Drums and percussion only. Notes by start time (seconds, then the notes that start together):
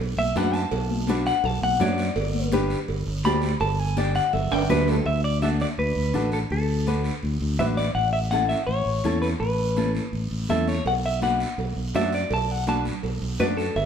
0.00 cowbell
0.18 high conga
0.36 cowbell, high conga, low timbale, short guiro
0.54 short guiro
0.71 cowbell, high conga, long guiro
0.90 high conga
1.07 cowbell, high conga, short guiro
1.26 short guiro
1.44 cowbell, high conga, low conga, long guiro
1.62 high conga
1.80 cowbell, high conga, low conga, low timbale, short guiro
1.98 short guiro
2.16 cowbell, high conga, long guiro
2.34 high conga
2.52 cowbell, high conga, short guiro
2.70 short guiro
2.88 cowbell, high conga, long guiro
3.24 cowbell, high conga, low timbale, short guiro
3.42 short guiro
3.60 cowbell, high conga, long guiro
3.97 cowbell, high conga, short guiro
4.15 short guiro
4.33 cowbell, high conga, low conga, long guiro
4.52 high timbale
4.70 cowbell, high conga, low conga, low timbale, short guiro
4.87 low timbale, short guiro
5.06 long guiro
5.42 high conga, short guiro
5.60 short guiro
5.78 high conga, long guiro
6.14 high conga, short guiro
6.32 short guiro
6.50 high conga, long guiro
6.87 high conga, short guiro
7.04 short guiro
7.23 high conga, long guiro
7.59 high conga, low conga, short guiro
7.78 short guiro
7.95 high conga, long guiro
8.31 high conga, short guiro
8.49 short guiro
8.67 high conga, long guiro
9.04 high conga, short guiro
9.23 short guiro
9.41 long guiro
9.77 high conga, short guiro
9.95 short guiro
10.13 high conga, long guiro
10.49 high conga, low conga, short guiro
10.68 short guiro
10.85 cowbell, high conga, long guiro
11.21 cowbell, high conga, short guiro
11.40 short guiro
11.59 cowbell, long guiro
11.94 cowbell, high conga, low timbale, short guiro
12.13 short guiro
12.31 cowbell, high conga, long guiro
12.67 cowbell, high conga, short guiro
12.85 low conga, short guiro
13.03 cowbell, high conga, long guiro
13.39 cowbell, high conga, low conga, low timbale, short guiro
13.58 short guiro
13.76 cowbell, high conga, long guiro